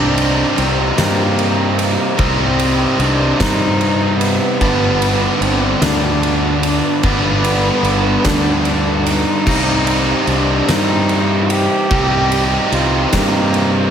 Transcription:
Already playing: fingered electric bass C2, distorted electric guitar C3 G3 C4 D#4, cello D4
0.18 ride
0.58 fingered electric bass C2, cello C4, ride
0.97 fingered electric bass G2, cello A#3, snare, ride
1.39 ride
1.79 cello A#3, ride
2.17 fingered electric bass C2, distorted electric guitar C3 G3 C4 D#4, cello C4, kick, ride
2.59 ride
2.99 fingered electric bass C2, cello D4, ride
3.40 fingered electric bass G2, cello D#4, kick, snare, ride
3.81 ride
4.18 cello B3, ride
4.61 fingered electric bass G1, distorted electric guitar G2 D3 G3 B3 D4, kick, ride
5.02 ride
5.40 fingered electric bass G1, cello C4, ride
5.81 fingered electric bass D2, cello D4, snare, ride
6.23 ride
6.62 cello D4, ride
7.03 fingered electric bass G1, distorted electric guitar G2 D3 G3 B3 D4, cello B3, kick, ride
7.44 ride
7.82 fingered electric bass G1, ride
8.25 fingered electric bass D2, cello D4, kick, snare, ride
8.65 cello D4, ride
9.05 cello D#4, ride
9.46 fingered electric bass C2, distorted electric guitar C3 G3 C4 D#4, kick, crash
9.87 ride
10.27 fingered electric bass C2, cello D4, ride
10.68 fingered electric bass G2, cello D#4, snare, ride
11.09 ride
11.50 cello G4, ride
11.91 fingered electric bass C2, distorted electric guitar C3 G3 C4 D#4, kick, ride
12.32 ride
12.72 fingered electric bass C2, cello F4, ride
13.13 fingered electric bass G2, cello A#3, kick, snare, ride
13.54 ride

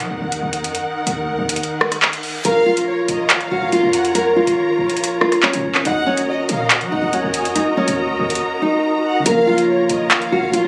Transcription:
Already playing: string section D#3 D#4 A#4 F#5
0.00 808-style bass F#3, closed hi-hat
0.11 808-style bass D#2
0.21 808-style bass D#2
0.32 closed hi-hat
0.43 808-style bass D#2
0.53 closed hi-hat
0.64 808-style bass F#2, closed hi-hat
0.75 closed hi-hat
1.07 808-style bass D#2, closed hi-hat
1.28 808-style bass C#2
1.39 808-style bass D#2
1.49 closed hi-hat
1.56 closed hi-hat, reverse cymbal
1.63 closed hi-hat
1.81 cross-stick
1.92 cross-stick, closed hi-hat
2.02 clap
2.13 closed hi-hat
2.23 open hi-hat
2.45 808-style bass A#1, string section F4 A#4 C#5 A#5, nylon-string guitar A#4, violin section F5, closed hi-hat
2.66 nylon-string guitar F4
2.77 closed hi-hat
2.87 violin section C#5
3.08 808-style bass A#1, violin section D#5, closed hi-hat
3.30 808-style bass G#1, violin section F5, clap, closed hi-hat
3.41 808-style bass A#1, closed hi-hat
3.51 808-style bass A#1, nylon-string guitar F#4
3.62 808-style bass A#1
3.72 nylon-string guitar F4, closed hi-hat
3.83 808-style bass F2
3.93 violin section F#5, closed hi-hat
4.05 closed hi-hat
4.15 nylon-string guitar A#4, closed hi-hat
4.36 nylon-string guitar F4
4.47 808-style bass G#1, closed hi-hat
4.79 808-style bass A#1
4.90 closed hi-hat
4.97 closed hi-hat
5.04 closed hi-hat
5.21 nylon-string guitar F4, cross-stick
5.32 cross-stick, closed hi-hat
5.43 nylon-string guitar C#4, clap
5.53 808-style bass A#2, closed hi-hat
5.64 808-style bass A#1
5.75 clap
5.85 808-style bass D#2, nylon-string guitar D#4, string section F#4 A#4 D#5 A#5, violin section F#5, closed hi-hat
6.06 nylon-string guitar C#4
6.17 closed hi-hat
6.28 violin section D#5
6.49 808-style bass A#2, violin section F5, closed hi-hat
6.70 violin section F#5, clap, closed hi-hat
6.81 808-style bass F#3, closed hi-hat
6.92 808-style bass D#2, nylon-string guitar D#4
7.02 808-style bass D#2
7.13 nylon-string guitar C#4, closed hi-hat
7.24 808-style bass D#2
7.34 violin section G#5, closed hi-hat
7.45 808-style bass F#2, closed hi-hat
7.55 nylon-string guitar D#4, closed hi-hat
7.77 nylon-string guitar C#4
7.88 808-style bass D#2, closed hi-hat
8.09 808-style bass C#2
8.19 808-style bass D#2
8.30 closed hi-hat
8.35 closed hi-hat
8.62 nylon-string guitar D#4
9.05 violin section F#5
9.20 synth keys C#3 F3
9.26 808-style bass A#1, synth keys A#3, string section F4 A#4 C#5, nylon-string guitar A#4, violin section F5, closed hi-hat
9.32 synth keys F4
9.47 nylon-string guitar F4
9.58 closed hi-hat
9.68 violin section C#5
9.89 808-style bass A#1, violin section D#5, closed hi-hat
10.11 808-style bass G#1, violin section F5, clap, closed hi-hat
10.21 808-style bass A#1, closed hi-hat
10.32 808-style bass A#1, nylon-string guitar F#4
10.43 808-style bass A#1
10.53 nylon-string guitar F4, closed hi-hat
10.64 808-style bass F2

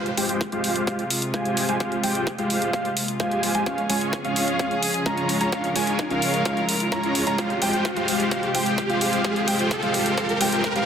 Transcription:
Already playing: sub bass F2, string section C3 G#3 F4, riser
0.06 closed hi-hat
0.17 sub bass F2, supersaw synth G#3 F4 G4 C5 G5, grand piano G5, open hi-hat
0.29 closed hi-hat
0.41 kick, closed hi-hat
0.52 sub bass F2, supersaw synth G#3 F4 G4 C5 F5, grand piano F5, closed hi-hat
0.64 open hi-hat
0.76 closed hi-hat
0.87 sub bass F2, supersaw synth G#3 F4 G4 C5 F5, grand piano F5, kick, closed hi-hat
0.99 closed hi-hat
1.10 open hi-hat
1.22 closed hi-hat
1.34 sub bass F2, supersaw synth G#3 F4 G4 C5 G#5, grand piano F5, kick, closed hi-hat
1.45 closed hi-hat
1.57 open hi-hat
1.69 sub bass F2, supersaw synth G#3 F4 G4 C5 G#5, grand piano G#5, closed hi-hat
1.80 sub bass F2, supersaw synth G#3 F4 G4 C5 F5, grand piano F5, kick, closed hi-hat
1.92 closed hi-hat
2.03 sub bass F2, supersaw synth G#3 F4 G4 C5 G5, grand piano G5, open hi-hat
2.15 closed hi-hat
2.27 kick, closed hi-hat
2.38 sub bass F2, supersaw synth G#3 F4 G4 C5 F5, grand piano F5, closed hi-hat
2.50 open hi-hat
2.62 closed hi-hat
2.73 sub bass F2, supersaw synth G#3 G4, grand piano F5, kick, closed hi-hat
2.85 closed hi-hat
2.97 open hi-hat
3.08 closed hi-hat
3.20 sub bass F2, supersaw synth G#3 F4 G4 C5 G#5, grand piano F5, kick, closed hi-hat
3.31 closed hi-hat
3.43 open hi-hat
3.55 sub bass F2, supersaw synth G#3 F4 G4 C5 G#5, grand piano G#5, closed hi-hat
3.66 sub bass C#2, string section C#3 F3 G#3 F4 G#4, supersaw synth G#3 C#4 F4 C#5 F5, grand piano F5, kick, closed hi-hat
3.78 closed hi-hat
3.89 sub bass C#2, supersaw synth G#3 C#4 F4 C#5 G#5, grand piano G#5, open hi-hat
4.01 closed hi-hat
4.13 kick, closed hi-hat
4.24 sub bass C#2, supersaw synth G#3 C#4 F4 C#5 F5, grand piano F5, closed hi-hat
4.36 open hi-hat
4.48 closed hi-hat
4.59 sub bass C#2, supersaw synth G#3 C#4 F4 F5, grand piano F5, kick, closed hi-hat
4.71 closed hi-hat
4.83 open hi-hat
4.94 closed hi-hat
5.06 sub bass C#2, supersaw synth G#3 C#4 F4 C#5 A#5, grand piano A#5, kick, closed hi-hat
5.17 closed hi-hat
5.29 open hi-hat
5.41 sub bass C#2, supersaw synth G#3 C#4 F4 C#5 A#5, grand piano A#5, closed hi-hat
5.52 sub bass C#2, string section A#4, grand piano F5, kick, closed hi-hat
5.64 closed hi-hat
5.76 sub bass C#2, supersaw synth G#3 C#4 F4 C#5 G#5, grand piano G#5, open hi-hat
5.87 closed hi-hat
5.99 kick, closed hi-hat
6.11 sub bass C#2, supersaw synth G#3 C#4 F4 C#5 F5, grand piano F5, closed hi-hat
6.22 open hi-hat
6.34 closed hi-hat
6.45 sub bass C#2, supersaw synth C#4 F4 C#5 F5, grand piano F5, kick, closed hi-hat
6.57 closed hi-hat
6.69 open hi-hat
6.80 closed hi-hat
6.92 supersaw synth G#3 C#4 F4 C#5 A#5, grand piano A#5, kick, closed hi-hat
7.03 closed hi-hat
7.15 open hi-hat
7.27 sub bass C#2, supersaw synth G#3 C#4 F4 C#5 A#5, grand piano A#5, closed hi-hat
7.38 sub bass F2, string section C3 G4, supersaw synth F4 G4 C5 F5, grand piano F5, kick, closed hi-hat
7.50 closed hi-hat
7.62 sub bass F2, supersaw synth G#3 F4 G4 C5 G5, grand piano G5, open hi-hat
7.73 closed hi-hat
7.85 kick, closed hi-hat
7.97 sub bass F2, supersaw synth G#3 F4 G4 C5 F5, grand piano F5, closed hi-hat
8.08 open hi-hat
8.20 closed hi-hat
8.31 sub bass F2, supersaw synth G#3 F4 G4 F5, grand piano F5, kick, closed hi-hat
8.43 closed hi-hat
8.55 sub bass F2, supersaw synth G#3 F4 G4 C5 G5, grand piano G5, open hi-hat
8.66 closed hi-hat
8.78 kick, closed hi-hat
8.90 sub bass F2, supersaw synth G#3 F4 G4 C5 F5, grand piano F5, closed hi-hat
9.01 open hi-hat
9.13 closed hi-hat
9.24 supersaw synth G#3 F4 G4 C5 F5, grand piano F5, kick, closed hi-hat
9.36 closed hi-hat
9.48 sub bass F2, supersaw synth G#3 F4 G4 C5 G5, grand piano G5, open hi-hat
9.59 closed hi-hat
9.71 kick, closed hi-hat
9.83 supersaw synth G#3 F4 G4 C5 F5, grand piano F5, closed hi-hat
9.94 open hi-hat
10.06 closed hi-hat
10.17 supersaw synth G#3 F4 G4 C5 F5, grand piano F5, kick, closed hi-hat
10.29 closed hi-hat
10.41 sub bass F2, supersaw synth G#3 F4 G4 C5 G5, grand piano G5, open hi-hat
10.52 closed hi-hat
10.64 kick, closed hi-hat
10.76 sub bass F2, supersaw synth G#3 F4 G4 C5 F5, grand piano F5, closed hi-hat

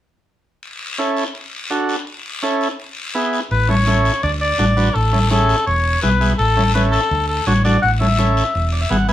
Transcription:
0.63 long guiro
0.98 transistor combo organ C#4 E4 A4, short guiro
1.17 short guiro
1.35 long guiro
1.70 transistor combo organ D4 F#4 A4, short guiro
1.89 short guiro
2.07 long guiro
2.43 transistor combo organ C#4 E4 A4, short guiro
2.61 short guiro
2.80 long guiro
3.15 transistor combo organ B3 E4 G#4, short guiro
3.33 short guiro
3.51 fingered electric bass A1, oboe B4, high conga, long guiro
3.68 transistor combo organ C#4 E4 A4, oboe C#5, high conga
3.87 transistor combo organ C#4 E4 A4, high conga, short guiro
4.05 short guiro
4.23 fingered electric bass D2, oboe D5, high conga, long guiro
4.41 oboe D5
4.58 fingered electric bass A1, transistor combo organ D4 F#4 A4, high conga, short guiro
4.77 transistor combo organ D4 F#4 B4, high conga, short guiro
4.94 fingered electric bass A1, oboe A4, high conga, long guiro
5.13 transistor combo organ C#4 E4 A4, high conga
5.30 transistor combo organ C#4 E4 G#4, oboe A4, high conga, short guiro
5.49 short guiro
5.66 fingered electric bass E1, oboe C#5, high conga, long guiro
6.02 fingered electric bass B1, transistor combo organ B3 E4 G#4, oboe B4, high conga, short guiro
6.20 transistor combo organ B3 E4 G#4, high conga, short guiro
6.38 fingered electric bass A1, oboe A4, long guiro
6.57 transistor combo organ C#4 E4 A4, high conga
6.74 transistor combo organ C#4 E4 A4, oboe B4, high conga, short guiro
6.92 oboe A4, short guiro
7.11 fingered electric bass D2, high conga, long guiro
7.28 oboe A4
7.47 fingered electric bass A1, transistor combo organ D4 F#4 A4, oboe C#5, high conga, short guiro
7.64 transistor combo organ D4 F#4 A4, oboe D5, high conga, short guiro
7.82 fingered electric bass A1, oboe F#5, long guiro
8.00 transistor combo organ C#4 E4 A4, oboe E5, high conga
8.18 transistor combo organ C#4 E4 A4, high conga, short guiro
8.37 short guiro
8.54 fingered electric bass E1, high conga, long guiro
8.73 transistor combo organ D5
8.81 transistor combo organ E5
8.90 fingered electric bass G#1, transistor combo organ B3 E4 G#4 F#5, high conga, short guiro
9.08 transistor combo organ B3 E4 B4 G#5, high conga, short guiro

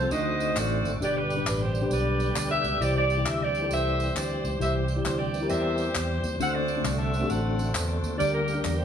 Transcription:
Already playing: tonewheel organ A3 C4 A4, saxophone section F4 A4 C5
0.02 tine electric piano C4 F4 A4
0.11 fingered electric bass D2, tine electric piano D3 A3 D4 D#4 F#4 C5, tonewheel organ D3 A3 F#4, saxophone section F#4 C5 D#5, tambourine
0.40 tambourine
0.56 fingered electric bass A1, saxophone section F#4 A4 D5, clap, tambourine
0.84 fingered electric bass G#1, tambourine
1.00 fingered electric bass G1, tine electric piano G2 D4 G4 B4, tonewheel organ B2 D3 G3 G4, saxophone section G4 B4 D5, tambourine
1.17 saxophone section D4 G4 B4
1.30 tambourine
1.37 tine electric piano D4 G4 B4
1.46 fingered electric bass A1, saxophone section B4, clap, tambourine
1.63 saxophone section G4 C5
1.75 tambourine
1.82 tine electric piano D4 G4 B4
1.91 fingered electric bass B1, saxophone section G4 B4 D5, tambourine
2.20 tambourine
2.36 fingered electric bass D2, saxophone section D5, clap, tambourine
2.50 saxophone section G4 B4 E5
2.64 fingered electric bass C#2, tambourine
2.80 fingered electric bass C2, tine electric piano C3 E4 G4 C5, tonewheel organ E3 C4, saxophone section G4 D5, tambourine
2.96 saxophone section G4 D5
3.10 tambourine
3.18 tine electric piano E4 G4 D5
3.26 fingered electric bass D2, saxophone section E5, clap, tambourine
3.42 saxophone section G4 D5
3.55 tambourine
3.62 tine electric piano E4 G4 A4
3.71 fingered electric bass C2, saxophone section G4 C5 E5, tambourine
4.00 tambourine
4.15 fingered electric bass D2, saxophone section G4 D5, clap, tambourine
4.44 fingered electric bass C#2, tambourine
4.59 fingered electric bass C2, tine electric piano C3 E4 G4 C5, saxophone section G4 C5 E5, tambourine
4.88 tambourine
4.96 tine electric piano E4 G4 D5
5.05 fingered electric bass D2, saxophone section C5, clap, tambourine
5.19 saxophone section G4 D5
5.34 tambourine
5.41 tine electric piano E4 G4 A#4
5.49 fingered electric bass E2, saxophone section G4 C5 E5, tambourine
5.78 tambourine
5.95 fingered electric bass E2, clap, tambourine
6.23 fingered electric bass D#2, tambourine
6.39 fingered electric bass D2, tonewheel organ D3 A3 C4 F#4, tine electric piano D3 A3 C4 D4 F#4 C5, saxophone section A4 C5 F#5, tambourine
6.54 saxophone section F#4 A4 D5
6.68 tambourine
6.76 tine electric piano A3 C4 D4 F#4 D5
6.84 fingered electric bass C2, saxophone section D5, clap, tambourine
6.98 saxophone section A4 C5 E5
7.14 tambourine
7.20 tine electric piano A3 C4 D4 F#4 G4
7.27 fingered electric bass A1, tine electric piano A4, saxophone section A4 C5 F#5, tambourine
7.59 tambourine
7.74 fingered electric bass E2, clap, tambourine
8.03 fingered electric bass D#2, tambourine
8.18 fingered electric bass D2, tine electric piano D3 D4 G4 A#4, tonewheel organ G3 A#3 G4, saxophone section G4 A#4 D5, tambourine
8.33 saxophone section D4 G4 A#4
8.48 tambourine
8.54 tine electric piano D4 G4 A#4
8.63 fingered electric bass E2, saxophone section A#4, clap, tambourine
8.77 saxophone section G4 C5

